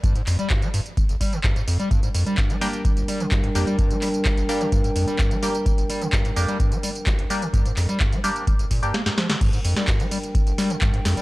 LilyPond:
<<
  \new Staff \with { instrumentName = "Analog synth pad" } { \time 4/4 \key g \minor \tempo 4 = 128 r1 | <g d' bes' g''>1~ | <g d' bes' g''>1~ | <g d' bes' g''>1~ |
<g d' bes' g''>2. r4 | <g d' bes' g''>1 | }
  \new Staff \with { instrumentName = "Synth stab" } { \time 4/4 \key g \minor r1 | r4. <bes d' g'>8 r4. <bes d' g'>16 r16 | r4. <bes d' g'>8 r4. <bes d' g'>16 r16 | r4. <bes d' g'>8 r4. <bes d' g'>16 r16 |
r4. <bes d' g'>8 r8. <bes d' g'>16 r4 | r1 | }
  \new Staff \with { instrumentName = "Acid bass" } { \clef bass \time 4/4 \key g \minor g,16 aes,16 f,16 g16 g,16 g16 g,16 r8 g,,16 g16 d16 g,16 aes,16 f,16 g16 | g,16 aes,16 f,16 g16 g,16 g16 g16 r8 g,,16 g16 d16 g,16 aes,16 f,16 g16 | g,16 g16 g16 r8 g,,16 g16 d16 g,16 aes,16 f,16 g16 g,16 g16 g16 r16 | r16 g,,16 g16 d16 g,16 aes,16 f,16 g16 g,16 g16 g16 r8 g,,16 g16 d16 |
g,16 aes,16 f,16 g16 g,16 g16 g16 r8 g,,16 bes,16 g,16 bes16 g,16 f16 d16 | g,16 aes,16 f,16 g16 g,16 g16 g16 r8 g,,16 g16 d16 g,16 aes,16 f,16 g16 | }
  \new DrumStaff \with { instrumentName = "Drums" } \drummode { \time 4/4 <hh bd tamb>16 <hh tamb>16 <hc hho tamb>16 <hh tamb>16 <hc hh bd tamb>16 <hh tamb>16 <hho tamb>16 <hh tamb>16 <hh bd tamb>16 <hh tamb>16 <hho bd tamb>16 <hh tamb>16 <hc hh bd tamb>16 <hh tamb>16 <hho tamb>16 <hh tamb>16 | <hh bd tamb>16 <hh tamb>16 <hho tamb>16 <hh tamb>16 <hc hh bd tamb>16 <hh tamb>16 <hho tamb>16 <hh tamb>16 <hh bd tamb>16 <hh tamb>16 <hho tamb>16 <hh tamb>16 <hc hh bd tamb>16 hh16 <hho tamb>16 <hh tamb>16 | <hh bd tamb>16 <hh tamb>16 <hc hho tamb>16 <hh tamb>16 <hc hh bd tamb>16 <hh tamb>16 <hho tamb>16 <hh tamb>16 <hh bd tamb>16 <hh tamb>16 <hho tamb>16 <hh tamb>16 <hc hh bd tamb>16 <hh tamb>16 <hho tamb>16 <hh tamb>16 | <hh bd tamb>16 <hh tamb>16 <hho tamb>16 <hh tamb>16 <hc hh bd tamb>16 <hh tamb>16 <hho tamb>16 <hh tamb>16 <hh bd tamb>16 <hh tamb>16 <hho tamb>16 <hh tamb>16 <hc hh bd tamb>16 hh16 <hho tamb>16 <hh tamb>16 |
<hh bd tamb>16 <hh tamb>16 <hc hho tamb>16 <hh tamb>16 <hc hh bd tamb>16 <hh tamb>16 <hho tamb>16 <hh tamb>16 <hh bd tamb>16 <hh tamb>16 <hho bd tamb>16 <hh tamb>16 sn16 sn16 sn16 sn16 | <cymc hh bd tamb>16 <hh tamb>16 <hho tamb>16 <sn tamb>16 <hc hh bd tamb>16 <hh tamb>16 <hho tamb>16 <hh tamb>16 <hh bd tamb>16 <hh tamb>16 <hho sn tamb>16 <hh tamb>16 <hc hh bd tamb>16 hh16 <hho sn tamb>16 <hh tamb>16 | }
>>